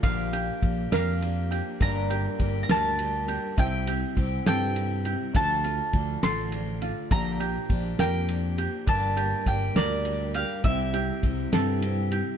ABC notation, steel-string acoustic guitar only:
X:1
M:6/8
L:1/8
Q:3/8=68
K:Bblyd
V:1 name="Steel-string acoustic guitar"
[B,,D,F,B,DG] [F,B,DG] [F,B,DG] [B,,D,F,B,DG] [F,B,DG] [F,B,DG] | [G,,D,G,B,DG] [G,B,DG] [G,B,DG] [G,,D,G,B,DG] [G,B,DG] [G,B,DG] | [C,G,CEG] [CEG] [G,CEG] [C,G,CEG] [G,CEG] [CEG] | [D,F,DFA] [DFA] [F,DFA] [D,F,DFA] [F,DFA] [DFA] |
[B,,D,F,B,DG] [F,B,DG] [F,B,DG] [B,,D,F,B,DG] [F,B,DG] [F,B,DG] | [G,,D,G,B,DG] [G,B,DG] [G,B,DG] [G,,D,G,B,DG] [G,B,DG] [G,B,DG] | [C,G,CEG] [CEG] [G,CEG] [C,G,CEG] [G,CEG] [CEG] |]